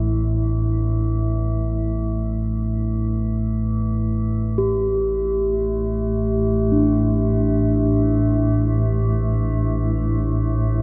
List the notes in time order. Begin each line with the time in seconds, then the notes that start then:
Already playing: A1 A2 D4 E4
4.14 A1 A2
4.58 G4
6.72 D4